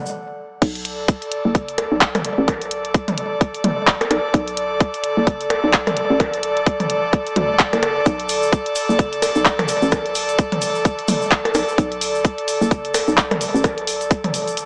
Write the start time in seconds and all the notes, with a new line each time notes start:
Already playing: A4 D5 F#5
0.06 cabasa
0.62 B1 A4, kick, closed hi-hat, crash
0.75 closed hi-hat
0.81 D5
0.85 closed hi-hat
1.08 kick, closed hi-hat
1.22 closed hi-hat
1.32 closed hi-hat
1.45 F#1
1.55 kick, closed hi-hat
1.68 closed hi-hat
1.78 D2, closed hi-hat, percussion blips
1.92 B1
2.01 kick, clap, closed hi-hat
2.15 closed hi-hat, mid tom, percussion blips
2.25 closed hi-hat
2.38 A1
2.48 kick, closed hi-hat, percussion blips
2.61 B1, closed hi-hat
2.71 closed hi-hat
2.85 closed hi-hat
2.94 kick, closed hi-hat
3.08 closed hi-hat, mid tom
3.18 closed hi-hat
3.31 F#1
3.41 kick, closed hi-hat
3.54 closed hi-hat
3.64 F#1, closed hi-hat, mid tom
3.87 kick, clap, closed hi-hat
4.01 closed hi-hat, percussion blips
4.11 B1, closed hi-hat, percussion blips
4.34 B1, kick, closed hi-hat
4.48 closed hi-hat
4.57 closed hi-hat
4.80 kick, closed hi-hat
4.94 closed hi-hat
5.04 closed hi-hat
5.17 F#1
5.27 kick, closed hi-hat
5.41 closed hi-hat
5.50 D2, closed hi-hat, percussion blips
5.64 B1
5.73 kick, clap, closed hi-hat
5.87 closed hi-hat, mid tom, percussion blips
5.97 closed hi-hat
6.10 A1
6.20 kick, closed hi-hat, percussion blips
6.34 B1, closed hi-hat
6.43 closed hi-hat
6.57 closed hi-hat
6.66 kick, closed hi-hat
6.80 closed hi-hat, mid tom
6.90 closed hi-hat
7.03 F#1
7.13 kick, closed hi-hat
7.27 closed hi-hat
7.36 D2, closed hi-hat, mid tom
7.59 kick, clap, closed hi-hat
7.73 F#1, closed hi-hat, percussion blips
7.83 closed hi-hat, percussion blips
8.06 B1, kick, closed hi-hat, cabasa
8.20 closed hi-hat
8.29 open hi-hat, cabasa
8.43 cabasa
8.52 kick, closed hi-hat, cabasa
8.66 closed hi-hat
8.75 open hi-hat, cabasa
8.89 F#1, cabasa
8.99 kick, closed hi-hat, cabasa
9.13 closed hi-hat
9.22 D2, open hi-hat, percussion blips, cabasa
9.35 B1, cabasa
9.46 kick, clap, closed hi-hat, cabasa
9.59 closed hi-hat, mid tom, percussion blips
9.68 open hi-hat, cabasa
9.82 A1, cabasa
9.92 kick, closed hi-hat, percussion blips, cabasa
10.06 B1, closed hi-hat
10.15 open hi-hat, cabasa
10.29 closed hi-hat, cabasa
10.38 kick, closed hi-hat, cabasa
10.52 closed hi-hat, mid tom
10.62 open hi-hat, cabasa
10.75 F#1, cabasa
10.85 kick, closed hi-hat, cabasa
10.99 closed hi-hat
11.08 F#1, mid tom, open hi-hat, cabasa
11.22 cabasa
11.31 kick, clap, closed hi-hat, cabasa
11.45 closed hi-hat, percussion blips
11.54 B1, open hi-hat, percussion blips, cabasa
11.69 cabasa
11.78 B1, kick, closed hi-hat, cabasa
11.92 closed hi-hat
12.01 open hi-hat, cabasa
12.15 cabasa
12.24 kick, closed hi-hat, cabasa
12.38 closed hi-hat
12.48 open hi-hat, cabasa
12.61 F#1, cabasa
12.71 kick, closed hi-hat, cabasa
12.85 closed hi-hat
12.94 D2, open hi-hat, percussion blips, cabasa
13.08 B1, cabasa
13.18 kick, clap, closed hi-hat, cabasa
13.31 closed hi-hat, mid tom, percussion blips
13.41 open hi-hat, cabasa
13.55 A1, cabasa
13.64 kick, closed hi-hat, percussion blips, cabasa
13.78 B1, closed hi-hat
13.87 open hi-hat, cabasa
14.01 closed hi-hat, cabasa
14.11 kick, closed hi-hat, cabasa
14.24 closed hi-hat, mid tom
14.34 open hi-hat, cabasa
14.47 F#1, closed hi-hat, cabasa
14.57 closed hi-hat, cabasa